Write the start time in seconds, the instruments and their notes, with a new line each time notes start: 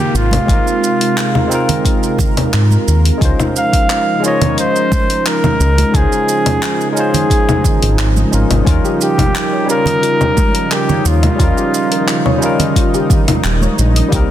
Already playing: analog synth pad C3 G#3 A#3 F4, tine electric piano G#3 C4 D#4 F4 A#4, flugelhorn G4, downlifter
0.14 analog synth bass G#1, flugelhorn F4, shaker
0.31 open hi-hat, high conga, low conga, shaker
0.45 analog synth bass G#1, tine electric piano G#3 C4 D#4, analog synth pad A#4, kick
0.49 tine electric piano F4 A#4, open hi-hat, shaker
0.67 shaker
0.84 shaker
1.01 open hi-hat, shaker
1.18 clap, open hi-hat, shaker
1.35 low conga
1.47 tine electric piano G#3 C4 D#4
1.52 tine electric piano F4 A#4, shaker
1.69 open hi-hat, low conga, shaker
1.85 kick, open hi-hat, shaker
2.03 shaker
2.18 kick, low conga, shaker
2.37 open hi-hat, low conga, shaker
2.53 analog synth bass G#2, clap, open hi-hat, shaker
2.71 high conga, shaker
2.88 analog synth bass D#2, shaker
3.05 open hi-hat, shaker
3.18 analog synth bass C#2, analog synth pad C#3 F3 D#4, tine electric piano G#3 C#4 D#4, kick
3.22 tine electric piano F4 C5, open hi-hat, shaker
3.40 low conga, shaker
3.56 flugelhorn F5, shaker
3.73 kick, open hi-hat, shaker
3.90 clap, open hi-hat, shaker
4.20 tine electric piano G#3 C#4 D#4
4.24 tine electric piano F4 D#5, flugelhorn C#5, shaker
4.41 open hi-hat, low conga, shaker
4.58 flugelhorn C5, open hi-hat, shaker
4.76 shaker
4.92 kick, high conga, shaker
5.10 open hi-hat, shaker
5.26 flugelhorn A#4, clap, open hi-hat, shaker
5.44 low conga, shaker
5.60 analog synth bass C#2, shaker
5.78 open hi-hat, high conga, shaker
5.91 analog synth bass C#2, tine electric piano G#3 C#4 D#4, kick, open hi-hat
5.95 tine electric piano F4 C5, flugelhorn G#4, shaker
6.12 shaker
6.29 shaker
6.46 open hi-hat, low conga, shaker
6.63 clap, open hi-hat, shaker
6.81 shaker
6.91 tine electric piano G#3, flugelhorn A#4
6.95 tine electric piano C#4 D#4 F4, flugelhorn G#4, shaker
7.00 tine electric piano C5
7.14 open hi-hat, low conga, shaker
7.30 kick, open hi-hat, shaker
7.49 low conga, shaker
7.64 kick, low conga, shaker
7.83 analog synth bass G#1, open hi-hat, shaker
7.99 clap, open hi-hat, shaker
8.16 high conga, shaker
8.31 analog synth bass G#1, tine electric piano G#3 C#4 D#4 F4 A#4, shaker
8.51 analog synth bass G#1, open hi-hat, low conga, shaker
8.63 analog synth bass D#2, tine electric piano G3 C#4 D#4, synth pluck F4, kick
8.67 analog synth pad D#3, tine electric piano F4 A#4, open hi-hat, shaker
8.85 synth pluck G4, shaker
9.01 flugelhorn G4, shaker
9.18 synth pluck A#4, kick, open hi-hat, low conga, shaker
9.35 clap, open hi-hat, shaker
9.52 synth pluck C#5
9.65 tine electric piano G3 C#4 D#4
9.70 tine electric piano F4 A#4, flugelhorn A#4, shaker
9.86 synth pluck D#5, open hi-hat, low conga, shaker
10.03 synth pluck F4, open hi-hat, shaker
10.20 synth pluck G4, low conga, shaker
10.37 kick, high conga, shaker
10.55 synth pluck A#4, open hi-hat, shaker
10.71 flugelhorn G4, clap, open hi-hat, shaker
10.89 synth pluck C#5, low conga, shaker
11.05 analog synth bass D#2, flugelhorn F4, shaker
11.23 synth pluck D#5, open hi-hat, high conga, low conga, shaker
11.36 analog synth bass D#2, tine electric piano G3 C#4 D#4, synth pluck F4, kick
11.40 tine electric piano F4 A#4, open hi-hat, shaker
11.57 synth pluck G4, shaker
11.74 shaker
11.91 synth pluck A#4, open hi-hat, shaker
12.08 clap, open hi-hat, shaker
12.25 synth pluck C#5, low conga
12.38 tine electric piano G3 C#4 D#4
12.42 tine electric piano F4 A#4, shaker
12.59 synth pluck D#5, open hi-hat, low conga, shaker
12.76 synth pluck F4, kick, open hi-hat, shaker
12.94 synth pluck G4, shaker
13.10 kick, low conga, shaker
13.28 synth pluck A#4, open hi-hat, low conga, shaker
13.44 analog synth bass D#1, clap, open hi-hat, shaker
13.62 synth pluck C#5, high conga, shaker
13.78 analog synth bass A#1, shaker
13.96 synth pluck D#5, open hi-hat, shaker
14.09 analog synth bass C2, tine electric piano G3 A#3 C4, kick, open hi-hat
14.13 analog synth pad C3 A#3, tine electric piano D#4 A#4, synth pluck G4, shaker